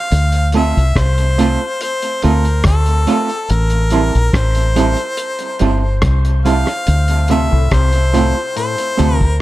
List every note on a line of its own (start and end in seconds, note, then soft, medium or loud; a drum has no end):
0.00 0.51 F5 loud
0.12 0.72 D2 loud
0.12 closed hi-hat medium
0.32 closed hi-hat medium
0.52 0.74 A3 medium
0.52 0.74 C4 medium
0.52 0.74 F4 medium
0.52 0.74 A4 loud
0.52 closed hi-hat medium
0.56 0.99 E5 loud
0.77 0.95 C2 medium
0.77 closed hi-hat soft
0.96 1.56 C2 medium
0.96 1.81 C5 loud
0.96 kick loud
0.96 cross-stick loud
0.96 closed hi-hat medium
1.18 muted clean electric guitar stroke soft
1.18 closed hi-hat medium
1.38 1.58 A3 medium
1.38 1.58 C4 medium
1.38 1.58 F4 medium
1.38 1.59 A4 loud
1.38 closed hi-hat medium
1.81 2.21 C5 loud
1.81 closed hi-hat medium
2.02 closed hi-hat medium
2.22 2.63 D2 medium
2.22 2.43 A3 medium
2.22 2.43 C4 medium
2.22 2.43 F4 medium
2.22 2.43 A4 medium
2.22 2.63 A#4 medium
2.22 closed hi-hat medium
2.45 closed hi-hat soft
2.64 3.05 D2 medium
2.64 3.52 A4 medium
2.64 kick loud
2.64 cross-stick loud
2.64 closed hi-hat loud
2.86 closed hi-hat medium
3.07 3.27 A3 medium
3.07 3.27 C4 medium
3.07 3.27 F4 medium
3.07 3.28 A4 medium
3.07 closed hi-hat medium
3.29 closed hi-hat soft
3.50 4.10 A1 loud
3.50 4.36 A#4 loud
3.50 closed hi-hat medium
3.70 closed hi-hat medium
3.90 4.12 G3 medium
3.90 4.12 C4 medium
3.90 4.12 E4 medium
3.90 4.12 A4 medium
3.90 closed hi-hat medium
4.15 4.33 A#1 medium
4.15 closed hi-hat soft
4.33 4.94 A1 medium
4.33 6.03 C5 medium
4.33 kick loud
4.33 cross-stick loud
4.33 closed hi-hat medium
4.55 muted clean electric guitar stroke soft
4.55 closed hi-hat medium
4.76 4.96 G3 medium
4.76 4.96 C4 medium
4.76 4.96 E4 medium
4.76 4.96 A4 medium
4.76 closed hi-hat medium
4.97 closed hi-hat soft
5.17 closed hi-hat medium
5.39 closed hi-hat medium
5.59 6.01 G1 medium
5.59 5.80 G3 medium
5.59 5.81 C4 medium
5.59 5.81 E4 medium
5.59 5.81 A4 medium
5.59 closed hi-hat medium
6.02 6.64 C2 medium
6.02 kick loud
6.02 cross-stick loud
6.02 closed hi-hat loud
6.25 closed hi-hat soft
6.45 6.65 G3 medium
6.45 6.65 C4 medium
6.45 6.65 E4 medium
6.45 6.66 A4 medium
6.45 7.26 F5 loud
6.45 closed hi-hat medium
6.67 cross-stick medium
6.67 closed hi-hat soft
6.87 7.48 D2 loud
6.87 closed hi-hat medium
7.08 closed hi-hat medium
7.28 7.48 C3 medium
7.28 7.50 A3 medium
7.28 7.50 C4 medium
7.28 7.50 F4 medium
7.28 7.51 A4 loud
7.28 7.70 E5 loud
7.28 closed hi-hat medium
7.51 7.71 C2 medium
7.51 7.69 A2 medium
7.71 8.32 C2 medium
7.71 7.91 C3 medium
7.71 8.53 C5 loud
7.71 kick loud
7.71 cross-stick loud
7.71 closed hi-hat medium
7.93 muted clean electric guitar stroke soft
7.93 closed hi-hat medium
8.13 8.33 A2 medium
8.13 8.34 A3 medium
8.13 8.34 C4 medium
8.13 8.34 F4 medium
8.13 8.34 A4 medium
8.13 closed hi-hat medium
8.56 8.75 A2 medium
8.56 9.15 C5 loud
8.56 closed hi-hat medium
8.78 closed hi-hat medium
8.97 9.39 D2 medium
8.97 9.17 C3 medium
8.97 9.18 A3 medium
8.97 9.18 C4 medium
8.97 9.19 F4 medium
8.97 9.19 A4 medium
8.97 closed hi-hat medium
9.15 9.38 A#4 loud
9.21 kick medium
9.21 closed hi-hat soft